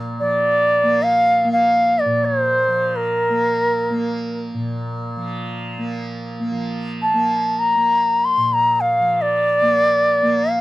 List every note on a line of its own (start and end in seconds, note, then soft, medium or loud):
0.00 2.05 A#2 medium
0.00 0.20 F3 medium
0.00 0.83 A#3 medium
0.20 2.67 F3 medium
0.20 1.04 D5 medium
0.83 1.44 A#3 medium
1.03 1.51 F5 loud
1.44 3.29 A#3 medium
1.52 2.01 F5 medium
1.99 2.27 D5 medium
2.05 4.54 A#2 medium
2.25 2.40 C#5 medium
2.40 2.97 C5 medium
2.68 5.16 F3 medium
2.96 4.41 A#4 medium
3.29 3.90 A#3 medium
3.90 5.78 A#3 soft
4.54 8.37 A#2 medium
5.17 6.52 F3 medium
5.78 6.40 A#3 medium
6.40 7.13 A#3 medium
6.52 9.00 F3 soft
7.02 7.60 A5 medium
7.13 7.75 A#3 medium
7.59 8.26 A#5 medium
7.75 9.62 A#3 medium
8.25 8.55 C6 medium
8.37 10.61 A#2 medium
8.54 8.82 A#5 medium
8.81 9.23 F5 medium
9.00 10.61 F3 soft
9.21 10.52 D5 medium
9.62 10.22 A#3 medium
10.22 10.61 A#3 medium
10.51 10.61 F5 medium